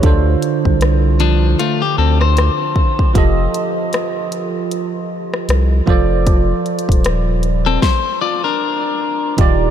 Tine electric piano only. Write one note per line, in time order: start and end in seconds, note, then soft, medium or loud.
0.02 3.10 D3 medium
0.02 3.11 D4 medium
0.02 3.11 F4 medium
0.02 3.12 A4 medium
0.06 3.12 C5 medium
3.14 5.83 F3 medium
3.14 5.83 F4 medium
3.14 5.84 G4 medium
3.14 5.84 A4 medium
3.18 5.85 D#5 medium
5.86 7.78 F3 medium
5.86 7.78 F4 medium
5.86 7.79 A4 medium
5.86 7.79 C5 medium
5.90 7.80 D5 medium
9.37 9.70 D#3 medium
9.37 9.70 D#4 medium
9.37 9.70 F4 medium
9.37 9.70 G4 medium
9.41 9.70 D5 medium